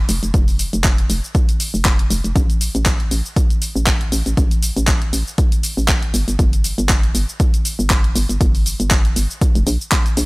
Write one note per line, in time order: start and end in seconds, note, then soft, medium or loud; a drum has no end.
0.09 0.20 F1 medium
0.09 open hi-hat loud
0.09 shaker medium
0.23 0.31 F1 medium
0.23 closed hi-hat soft
0.23 shaker soft
0.34 0.68 F1 loud
0.34 kick loud
0.34 closed hi-hat medium
0.34 shaker soft
0.48 open hi-hat medium
0.48 shaker soft
0.59 open hi-hat loud
0.59 shaker medium
0.73 1.06 F1 medium
0.73 closed hi-hat soft
0.73 shaker soft
0.84 kick loud
0.84 clap loud
0.84 closed hi-hat medium
0.84 shaker soft
0.98 closed hi-hat soft
1.10 1.20 F1 medium
1.10 open hi-hat loud
1.10 shaker medium
1.24 shaker soft
1.35 kick loud
1.35 closed hi-hat medium
1.35 shaker soft
1.49 closed hi-hat medium
1.49 shaker soft
1.60 open hi-hat loud
1.60 shaker medium
1.74 2.06 F1 medium
1.74 shaker soft
1.85 kick loud
1.85 clap loud
1.85 closed hi-hat medium
1.85 shaker soft
1.99 closed hi-hat medium
2.10 2.21 F1 medium
2.10 open hi-hat loud
2.10 shaker medium
2.24 2.33 F1 medium
2.24 closed hi-hat soft
2.24 shaker soft
2.36 2.70 A1 loud
2.36 kick loud
2.36 closed hi-hat medium
2.36 shaker soft
2.50 closed hi-hat soft
2.50 shaker soft
2.61 open hi-hat loud
2.61 shaker medium
2.75 3.07 A1 medium
2.75 closed hi-hat soft
2.75 shaker soft
2.86 kick loud
2.86 clap loud
2.86 closed hi-hat medium
2.86 shaker soft
3.00 closed hi-hat soft
3.11 3.22 A1 medium
3.11 open hi-hat loud
3.11 shaker medium
3.26 shaker soft
3.36 kick loud
3.36 closed hi-hat medium
3.36 shaker soft
3.50 closed hi-hat medium
3.50 shaker soft
3.62 open hi-hat loud
3.62 shaker medium
3.76 4.08 A1 medium
3.76 shaker soft
3.87 kick loud
3.87 clap loud
3.87 closed hi-hat medium
3.87 shaker soft
4.01 closed hi-hat soft
4.12 4.23 A1 medium
4.12 open hi-hat loud
4.12 shaker medium
4.26 4.35 A1 medium
4.26 closed hi-hat soft
4.26 shaker soft
4.37 4.71 A1 loud
4.37 kick loud
4.37 closed hi-hat medium
4.37 shaker soft
4.51 closed hi-hat soft
4.51 shaker soft
4.63 open hi-hat loud
4.63 shaker medium
4.76 5.09 A1 loud
4.76 closed hi-hat soft
4.76 shaker soft
4.87 kick loud
4.87 clap loud
4.87 closed hi-hat medium
4.87 shaker soft
5.02 closed hi-hat medium
5.13 5.24 A1 medium
5.13 open hi-hat loud
5.13 shaker medium
5.27 shaker soft
5.38 kick loud
5.38 closed hi-hat medium
5.38 shaker soft
5.52 closed hi-hat medium
5.52 shaker soft
5.63 open hi-hat loud
5.63 shaker medium
5.77 6.10 A1 medium
5.77 shaker soft
5.88 kick loud
5.88 clap loud
5.88 closed hi-hat medium
5.88 shaker soft
6.03 closed hi-hat medium
6.14 6.25 G1 medium
6.14 open hi-hat medium
6.14 shaker medium
6.28 6.36 G1 medium
6.28 closed hi-hat soft
6.28 shaker soft
6.39 6.73 G1 loud
6.39 kick loud
6.39 closed hi-hat medium
6.39 shaker soft
6.53 closed hi-hat medium
6.53 shaker soft
6.64 open hi-hat loud
6.64 shaker medium
6.78 7.11 G1 loud
6.78 closed hi-hat soft
6.78 shaker soft
6.89 kick loud
6.89 clap loud
6.89 closed hi-hat medium
6.89 shaker soft
7.03 closed hi-hat medium
7.15 7.25 G1 medium
7.15 open hi-hat loud
7.15 shaker medium
7.29 shaker soft
7.40 kick loud
7.40 closed hi-hat medium
7.40 shaker soft
7.54 closed hi-hat medium
7.54 shaker soft
7.65 open hi-hat loud
7.65 shaker medium
7.79 8.11 G1 medium
7.79 shaker soft
7.90 kick loud
7.90 clap loud
7.90 closed hi-hat medium
7.90 shaker soft
8.04 closed hi-hat medium
8.15 8.26 G1 medium
8.15 open hi-hat loud
8.15 shaker medium
8.29 8.38 G1 medium
8.29 closed hi-hat soft
8.29 shaker soft
8.41 8.75 G1 loud
8.41 kick loud
8.41 closed hi-hat medium
8.41 shaker soft
8.55 open hi-hat medium
8.55 shaker soft
8.66 open hi-hat loud
8.66 shaker medium
8.80 9.12 G1 medium
8.80 closed hi-hat soft
8.80 shaker soft
8.91 kick loud
8.91 clap loud
8.91 closed hi-hat medium
8.91 shaker soft
9.05 closed hi-hat medium
9.16 9.27 G1 medium
9.16 open hi-hat loud
9.16 shaker medium
9.31 shaker soft
9.41 kick loud
9.41 closed hi-hat medium
9.41 shaker soft
9.55 9.64 F1 medium
9.55 closed hi-hat medium
9.55 shaker soft
9.67 9.77 A#1 loud
9.67 open hi-hat loud
9.67 shaker medium
9.81 shaker soft
9.92 kick loud
9.92 clap loud
9.92 closed hi-hat medium
9.92 shaker soft
10.06 closed hi-hat medium
10.06 shaker soft
10.17 10.26 A#1 loud
10.17 open hi-hat loud
10.17 shaker medium